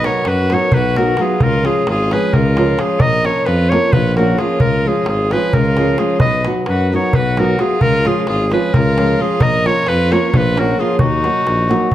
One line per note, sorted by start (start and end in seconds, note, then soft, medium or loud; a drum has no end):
0.04 0.22 F#3 medium
0.04 0.22 B3 medium
0.04 0.22 D#4 medium
0.04 0.22 F#4 medium
0.04 0.30 A#4 medium
0.04 0.30 C#5 medium
0.04 darbuka tek medium
0.25 0.54 F#2 medium
0.25 0.55 F#4 medium
0.25 0.55 B4 medium
0.25 darbuka tek medium
0.38 darbuka tek soft
0.50 0.68 F#3 medium
0.50 0.69 B3 medium
0.50 0.69 D#4 medium
0.50 0.69 F#4 medium
0.50 0.78 A#4 medium
0.50 0.76 C#5 medium
0.50 darbuka tek medium
0.72 1.13 B1 medium
0.72 0.99 B4 medium
0.72 darbuka dum medium
0.76 1.01 F#4 medium
0.84 darbuka tek soft
0.96 1.14 F#3 medium
0.96 1.14 B3 medium
0.96 1.15 D#4 medium
0.96 1.15 F#4 medium
0.96 1.23 A#4 medium
0.96 darbuka tek medium
1.01 1.23 F#4 medium
1.17 1.36 F#3 medium
1.17 1.36 B3 medium
1.17 1.36 D#4 medium
1.17 1.36 F#4 medium
1.17 darbuka tek medium
1.21 1.42 F4 medium
1.21 1.44 G#4 medium
1.30 darbuka tek soft
1.40 1.69 C#2 medium
1.40 1.66 F4 medium
1.40 1.68 A#4 loud
1.40 darbuka dum medium
1.63 1.82 F3 medium
1.63 1.82 G#3 medium
1.63 1.82 C#4 soft
1.63 1.83 F4 medium
1.63 1.88 F4 medium
1.63 1.88 G#4 medium
1.63 darbuka tek medium
1.87 2.16 G#1 medium
1.87 2.14 F4 medium
1.87 2.14 G#4 medium
1.87 darbuka tek medium
2.00 darbuka tek soft
2.11 2.29 F3 medium
2.11 2.30 G#3 medium
2.11 2.30 C#4 medium
2.11 2.30 F4 medium
2.11 2.37 G#4 medium
2.11 2.35 B4 medium
2.11 darbuka tek medium
2.33 2.75 C#2 loud
2.33 2.79 F4 medium
2.33 2.82 A#4 medium
2.33 darbuka dum medium
2.46 darbuka tek soft
2.56 2.74 F3 medium
2.56 2.74 G#3 medium
2.56 2.75 C#4 medium
2.56 2.75 F4 medium
2.56 darbuka tek medium
2.77 2.96 F3 medium
2.77 2.96 G#3 medium
2.77 2.96 C#4 medium
2.77 3.02 F4 medium
2.77 2.97 F4 medium
2.77 3.03 G#4 medium
2.77 darbuka tek medium
2.89 darbuka tek soft
3.00 3.29 A#1 medium
3.00 3.25 A#4 medium
3.00 3.27 D#5 loud
3.00 darbuka dum medium
3.24 3.43 F3 medium
3.24 3.43 A#3 medium
3.24 3.43 C#4 medium
3.24 3.43 F4 medium
3.24 3.48 A#4 medium
3.24 3.47 C#5 medium
3.24 darbuka tek medium
3.46 3.76 F2 loud
3.46 3.74 F4 medium
3.46 3.71 B4 medium
3.46 darbuka tek medium
3.60 darbuka tek soft
3.70 3.90 F3 medium
3.70 3.90 A#3 medium
3.70 3.90 C#4 medium
3.70 3.91 F4 medium
3.70 3.95 A#4 medium
3.70 3.94 C#5 medium
3.70 darbuka tek medium
3.93 4.34 A#1 loud
3.93 4.16 F4 medium
3.93 4.16 B4 medium
3.93 darbuka dum medium
4.06 darbuka tek soft
4.16 4.35 F3 medium
4.16 4.35 A#3 medium
4.16 4.36 C#4 medium
4.16 4.36 F4 medium
4.16 4.41 F#4 medium
4.16 4.40 A#4 medium
4.16 darbuka tek medium
4.38 4.57 F3 medium
4.38 4.57 A#3 medium
4.38 4.58 C#4 medium
4.38 4.61 F4 medium
4.38 4.58 F4 medium
4.38 4.62 G#4 medium
4.38 darbuka tek medium
4.50 darbuka tek soft
4.60 4.89 C#2 medium
4.60 4.86 F4 medium
4.60 4.89 A#4 medium
4.60 darbuka dum medium
4.72 darbuka tek soft
4.85 5.03 F3 medium
4.85 5.04 G#3 soft
4.85 5.04 C#4 medium
4.85 5.07 F4 medium
4.85 5.04 F4 medium
4.85 5.09 G#4 medium
4.96 darbuka tek soft
5.06 5.36 G#1 medium
5.06 5.34 F4 medium
5.06 5.34 G#4 medium
5.06 darbuka tek medium
5.31 5.50 F3 medium
5.31 5.50 G#3 medium
5.31 5.51 C#4 medium
5.31 5.51 F4 medium
5.31 5.57 G#4 medium
5.31 5.56 B4 medium
5.31 darbuka tek medium
5.42 darbuka tek soft
5.53 5.95 C#2 loud
5.53 6.00 F4 medium
5.53 6.00 A#4 medium
5.53 darbuka dum medium
5.65 darbuka tek soft
5.77 5.95 F3 medium
5.77 5.96 G#3 medium
5.77 5.96 C#4 medium
5.77 5.96 F4 medium
5.77 darbuka tek medium
5.98 6.17 F3 medium
5.98 6.17 G#3 medium
5.98 6.17 C#4 medium
5.98 6.21 F4 medium
5.98 6.17 F4 medium
5.98 6.20 G#4 medium
5.98 darbuka tek medium
6.10 darbuka tek soft
6.20 6.49 B1 medium
6.20 6.45 B4 medium
6.20 6.44 D#5 medium
6.20 darbuka dum medium
6.45 6.64 F#3 medium
6.45 6.64 B3 soft
6.45 6.64 D#4 medium
6.45 6.64 F#4 medium
6.45 darbuka tek medium
6.66 6.96 F#2 loud
6.66 6.92 F#4 medium
6.66 6.92 B4 medium
6.66 darbuka tek medium
6.78 darbuka tek soft
6.92 7.10 F#3 medium
6.92 7.11 B3 medium
6.92 7.11 D#4 medium
6.92 7.11 F#4 medium
6.92 7.18 A#4 medium
6.92 7.17 C#5 medium
7.13 7.55 B1 medium
7.13 7.39 F#4 medium
7.13 7.41 B4 medium
7.13 darbuka dum medium
7.26 darbuka tek soft
7.37 7.55 F#3 medium
7.37 7.56 B3 medium
7.37 7.56 D#4 medium
7.37 7.62 F#4 medium
7.37 7.56 F#4 medium
7.37 7.62 A#4 medium
7.37 darbuka tek medium
7.59 7.77 F#3 medium
7.59 7.77 B3 medium
7.59 7.77 D#4 medium
7.59 7.81 F4 medium
7.59 7.77 F#4 medium
7.59 7.83 G#4 medium
7.59 darbuka tek medium
7.70 darbuka tek soft
7.81 8.10 C#2 medium
7.81 8.06 F4 medium
7.81 8.08 A#4 loud
7.81 darbuka dum medium
8.05 8.23 F3 medium
8.05 8.23 G#3 medium
8.05 8.23 C#4 medium
8.05 8.27 F4 medium
8.05 8.24 F4 medium
8.05 8.29 G#4 medium
8.05 darbuka tek medium
8.27 8.56 G#1 loud
8.27 8.51 F4 medium
8.27 8.52 G#4 medium
8.27 darbuka tek medium
8.40 darbuka tek soft
8.50 8.69 F3 medium
8.50 8.69 G#3 medium
8.50 8.70 C#4 medium
8.50 8.70 F4 medium
8.50 8.77 G#4 medium
8.50 8.76 B4 medium
8.50 darbuka tek medium
8.74 9.15 C#2 loud
8.74 9.20 F4 medium
8.74 9.23 A#4 loud
8.74 darbuka dum medium
8.86 darbuka tek soft
8.96 9.14 F3 medium
8.96 9.15 G#3 medium
8.96 9.15 C#4 medium
8.96 9.15 F4 medium
8.96 darbuka tek medium
9.18 9.36 F3 medium
9.18 9.36 G#3 medium
9.18 9.36 C#4 medium
9.18 9.37 F4 medium
9.18 9.43 F4 medium
9.18 9.44 G#4 medium
9.30 darbuka tek soft
9.40 9.70 A#1 medium
9.40 9.67 A#4 loud
9.40 9.68 D#5 loud
9.40 darbuka dum loud
9.65 9.83 F3 medium
9.65 9.83 A#3 soft
9.65 9.83 C#4 medium
9.65 9.83 F4 medium
9.65 9.90 A#4 medium
9.65 9.90 C#5 loud
9.65 darbuka tek medium
9.87 10.16 F2 loud
9.87 10.13 F4 medium
9.87 10.14 B4 loud
9.87 darbuka tek medium
10.00 darbuka tek soft
10.11 10.29 F3 medium
10.11 10.29 A#3 medium
10.11 10.30 C#4 medium
10.11 10.30 F4 medium
10.11 10.30 A#4 medium
10.11 10.30 C#5 medium
10.11 darbuka tek medium
10.30 10.37 A#4 medium
10.30 10.39 C#5 medium
10.30 darbuka dum medium
10.35 10.74 A#1 loud
10.35 10.61 F4 medium
10.35 10.61 B4 loud
10.46 darbuka tek soft
10.55 10.73 F3 medium
10.55 10.74 A#3 medium
10.55 10.74 C#4 medium
10.55 10.75 F4 medium
10.55 darbuka tek medium
10.59 10.82 F#4 medium
10.59 10.81 A#4 medium
10.79 10.96 F3 medium
10.79 10.96 A#3 medium
10.79 10.96 C#4 medium
10.79 10.96 F4 medium
10.79 11.01 F4 medium
10.79 11.00 G#4 medium
10.99 11.28 D#2 medium
10.99 11.95 D#4 medium
10.99 11.95 F#4 loud
10.99 darbuka dum medium
11.12 darbuka tek soft
11.23 11.41 F#3 medium
11.23 11.42 A#3 medium
11.23 11.42 D#4 medium
11.23 11.42 F#4 medium
11.23 darbuka tek medium
11.36 darbuka tek soft
11.47 11.75 A#1 medium
11.47 darbuka tek medium
11.59 darbuka tek soft
11.68 11.87 F#3 medium
11.68 11.87 A#3 medium
11.68 11.88 D#4 medium
11.68 11.88 F#4 medium
11.68 darbuka tek medium
11.81 darbuka tek soft
11.91 darbuka dum medium